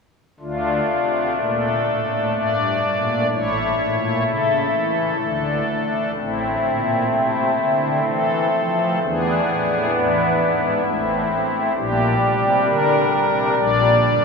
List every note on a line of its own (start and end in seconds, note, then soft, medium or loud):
0.40 0.80 D2 medium
0.40 0.81 D3 medium
0.40 3.26 A3 soft
0.40 3.27 D4 soft
0.40 1.33 F4 medium
0.89 1.29 C3 medium
1.36 1.78 A#2 medium
1.36 1.42 A4 medium
1.44 1.49 A#4 medium
1.50 2.33 A4 medium
1.86 2.28 A2 soft
2.35 2.76 G2 soft
2.35 3.27 D5 medium
2.85 3.24 A#2 soft
3.31 3.71 A1 medium
3.31 3.72 A2 medium
3.31 5.17 A3 soft
3.31 5.17 E4 soft
3.31 4.23 C#5 medium
3.80 4.19 A#2 soft
4.27 4.67 C#3 medium
4.27 6.12 A4 medium
4.74 5.14 E3 medium
5.22 5.62 D2 soft
5.22 5.62 D3 soft
5.22 6.13 A3 soft
5.22 5.68 D4 soft
5.70 6.09 D4 medium
6.16 6.56 A1 medium
6.16 6.56 A2 medium
6.16 8.99 A3 soft
6.16 8.99 C4 soft
6.16 7.07 E4 medium
6.63 7.03 A#2 medium
7.10 7.51 C3 medium
7.10 8.05 E4 medium
7.58 8.00 D3 medium
8.08 8.48 E3 soft
8.08 8.99 A4 medium
8.55 8.95 F3 medium
9.03 9.41 E2 medium
9.03 9.41 E3 medium
9.03 10.82 B3 soft
9.03 10.82 D4 soft
9.03 9.91 G#4 medium
9.47 9.86 A2 medium
9.93 10.32 E2 medium
9.93 11.73 E4 loud
10.39 10.79 G#2 medium
10.85 11.24 A1 medium
10.85 11.24 A2 medium
10.85 11.28 A3 soft
10.85 11.74 C4 soft
11.30 11.69 A3 medium
11.76 12.15 A#1 medium
11.76 12.15 A#2 medium
11.76 13.54 G3 soft
11.76 13.54 D4 medium
11.76 12.64 G4 loud
12.21 12.60 C3 medium
12.66 13.05 D3 medium
12.66 13.55 A#4 loud
13.12 13.51 C3 medium
13.57 13.96 A#1 medium
13.57 13.96 A#2 medium
13.57 14.25 G3 soft
13.57 14.25 D4 soft
13.57 14.25 D5 loud
14.04 14.25 G2 medium